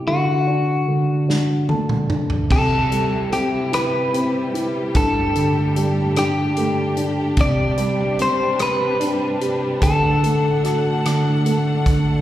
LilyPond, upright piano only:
<<
  \new Staff \with { instrumentName = "Upright piano" } { \time 6/8 \key c \lydian \tempo 4. = 49 r2 a''4 | r2. | r2. | r2. |
r2. | }
  \new Staff \with { instrumentName = "Upright piano" } { \time 6/8 \key c \lydian d8 d'8 d8 d'8 a8 d'8 | c8 g8 c'8 e'8 c'8 e'8 | g,8 d8 g8 d'8 a8 d'8 | c8 g8 c'8 g'8 d'8 g'8 |
d8 a8 fis'8 d8 a8 d8 | }
>>